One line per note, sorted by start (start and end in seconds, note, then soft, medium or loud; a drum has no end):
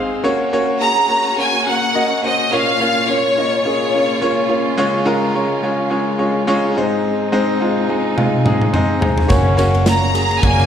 0.00 0.27 G#2 medium
0.00 0.23 C4 medium
0.00 0.27 C4 medium
0.00 0.23 D#4 medium
0.00 0.21 G#4 medium
0.00 0.27 G#4 medium
0.00 0.27 D#5 medium
0.00 0.17 F5 loud
0.24 0.46 A#3 loud
0.24 4.73 A#3 medium
0.24 0.46 C#4 loud
0.24 2.48 C#4 medium
0.24 2.48 F#4 medium
0.24 0.46 F#4 loud
0.24 0.46 C#5 loud
0.53 0.75 A#3 loud
0.53 0.75 C#4 loud
0.53 0.75 F#4 loud
0.53 0.75 C#5 loud
0.81 1.03 A#3 medium
0.81 1.03 C#4 medium
0.81 1.03 F#4 medium
0.81 1.03 G#4 medium
0.81 1.34 A#5 loud
1.09 1.31 A#3 medium
1.09 1.31 C#4 medium
1.09 1.31 F#4 medium
1.09 1.31 C#5 medium
1.37 1.59 A#3 medium
1.37 1.59 C#4 medium
1.37 1.59 F#4 medium
1.37 1.59 C#5 medium
1.37 1.67 G#5 loud
1.66 1.88 A#3 medium
1.66 1.88 C#4 medium
1.66 1.88 F#4 medium
1.66 1.88 A#4 medium
1.66 2.20 F#5 loud
1.94 2.16 A#3 loud
1.94 2.16 C#4 medium
1.94 2.16 F#4 medium
1.94 2.17 D#5 loud
2.23 2.45 A#3 medium
2.23 2.45 C#4 medium
2.23 2.45 F#4 medium
2.23 2.45 C5 medium
2.23 2.53 D#5 loud
2.52 3.33 A#2 medium
2.52 2.73 A#3 loud
2.52 6.72 C#4 medium
2.52 2.73 C#4 medium
2.52 6.72 F4 medium
2.52 2.74 F4 loud
2.52 2.73 C#5 loud
2.52 3.10 F5 loud
2.80 3.01 A#3 loud
2.80 3.02 C#4 loud
2.80 3.02 F4 loud
2.80 3.02 C#5 loud
3.08 3.30 A#3 medium
3.08 3.30 C#4 medium
3.08 3.30 F4 medium
3.08 3.30 C#5 medium
3.08 3.66 C#5 medium
3.38 3.59 A#3 medium
3.38 3.59 C#4 medium
3.38 3.59 F4 medium
3.38 3.59 D#5 medium
3.65 3.86 A#3 medium
3.65 3.86 C#4 medium
3.65 3.86 F4 medium
3.65 3.87 G#4 medium
3.65 4.47 C#5 medium
3.94 4.15 A#3 medium
3.94 4.15 C#4 medium
3.94 4.15 F4 medium
3.94 4.15 C#5 medium
4.21 4.43 A#3 loud
4.21 4.43 C#4 medium
4.21 4.43 F4 medium
4.21 4.43 C#5 loud
4.49 4.71 A#3 medium
4.49 4.71 C#4 medium
4.49 4.71 F4 medium
4.49 4.71 C#5 loud
4.78 5.59 C#3 medium
4.78 4.99 G#3 loud
4.78 9.26 G#3 medium
4.78 4.99 C#4 loud
4.78 5.00 F4 loud
4.78 4.99 C#5 loud
5.05 5.27 G#3 loud
5.05 5.27 C#4 loud
5.05 5.28 F4 loud
5.05 5.28 A#4 loud
5.35 5.56 G#3 medium
5.35 5.56 C#4 medium
5.35 5.56 F4 medium
5.35 5.56 C#5 loud
5.63 5.84 G#3 medium
5.63 5.84 C#4 medium
5.63 5.84 F4 medium
5.63 5.85 C#5 loud
5.90 6.12 G#3 medium
5.90 6.12 C#4 medium
5.90 6.13 F4 medium
5.90 6.12 C#5 loud
6.19 6.40 G#3 medium
6.19 6.41 C#4 medium
6.19 6.41 F4 medium
6.19 6.41 C#5 loud
6.47 6.69 G#3 loud
6.47 6.69 C#4 loud
6.47 6.69 F4 loud
6.47 6.69 C#5 loud
6.75 7.57 G#2 medium
6.75 7.23 G#3 loud
6.75 9.28 C4 medium
6.75 7.23 C4 medium
6.75 9.28 D#4 medium
6.75 7.23 D#4 medium
6.75 7.23 C5 loud
7.32 7.54 G#3 loud
7.32 7.54 C4 loud
7.32 7.54 D#4 loud
7.32 7.54 C5 loud
7.61 7.82 G#3 medium
7.61 7.82 C4 medium
7.61 7.82 D#4 medium
7.61 7.83 F4 loud
7.89 8.11 G#3 medium
7.89 8.11 C4 medium
7.89 8.11 D#4 medium
7.89 8.11 C5 loud
8.16 8.38 G#3 medium
8.16 8.39 C4 medium
8.16 8.39 D#4 medium
8.16 8.39 F4 loud
8.16 high tom medium
8.45 8.67 G#3 loud
8.45 8.67 C4 medium
8.45 8.67 D#4 medium
8.45 8.67 G#4 loud
8.45 mid tom medium
8.61 mid tom medium
8.73 8.95 G#3 loud
8.73 8.95 C4 loud
8.73 8.95 D#4 loud
8.73 8.95 C5 loud
8.73 mid tom medium
9.01 9.23 G#3 medium
9.01 9.23 C4 medium
9.01 9.24 D#4 medium
9.01 9.24 C5 loud
9.01 floor tom loud
9.18 floor tom medium
9.28 10.40 F#1 medium
9.28 9.72 C#3 medium
9.28 10.66 F#3 medium
9.28 9.51 A#3 loud
9.28 10.66 A#3 medium
9.28 9.51 C#4 loud
9.28 10.66 C#4 medium
9.28 9.72 C#4 loud
9.28 9.51 F#4 loud
9.28 9.51 C#5 loud
9.28 kick loud
9.28 ride medium
9.28 tambourine medium
9.57 9.79 A#3 loud
9.57 9.80 C#4 loud
9.57 9.80 F#4 loud
9.57 9.80 C#5 loud
9.57 ride medium
9.57 tambourine soft
9.74 10.13 A#2 medium
9.74 10.13 A#3 loud
9.74 ride soft
9.85 10.07 A#3 medium
9.85 10.08 C#4 medium
9.85 10.08 F#4 medium
9.85 10.08 C#5 medium
9.85 10.40 A#5 medium
9.85 snare loud
9.85 ride medium
9.85 tambourine medium
10.13 10.36 A#3 medium
10.13 10.36 C#4 medium
10.13 10.36 F#4 medium
10.13 10.36 G#4 medium
10.13 ride medium
10.13 tambourine soft
10.31 ride soft
10.41 10.66 F#1 loud
10.41 10.66 A#2 loud
10.41 10.64 A#3 medium
10.41 10.66 A#3 loud
10.41 10.64 C#4 medium
10.41 10.64 F#4 medium
10.41 10.64 C#5 medium
10.41 10.66 G#5 loud
10.41 kick loud
10.41 ride medium
10.59 ride soft